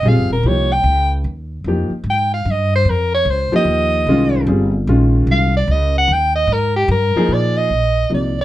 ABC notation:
X:1
M:3/4
L:1/8
Q:"Swing" 1/4=149
K:Ebmix
V:1 name="Soprano saxophone"
f B d g2 z | z4 g f | e c B d c e- | e4 z2 |
z2 f =d e _g | g e B G B2 | [K:Bbmix] d e3 d d |]
V:2 name="Grand piano"
[G,CFA] z [F,B,EG] z3 | z2 [F,B,EG] z3 | z4 z [F,B,EG]- | [F,B,EG]2 [E,A,DF]2 [G,CFA] z |
[E,A,DF]3 z3 | z4 z [F,B,EA]- | [K:Bbmix] [F,B,EA]2 z2 [C,F,B,E] z |]
V:3 name="Upright bass" clef=bass
(3B,,, G,,, E,,, C,,2 D,,2 | E,,2 F,, z A,,2 | G,,2 F,,2 D,, z | E,,2 C,,2 G,,,2 |
B,,,2 C,,2 D,,2 | E,,2 A,,2 G,, z | [K:Bbmix] B,,2 B,,,2 C,,2 |]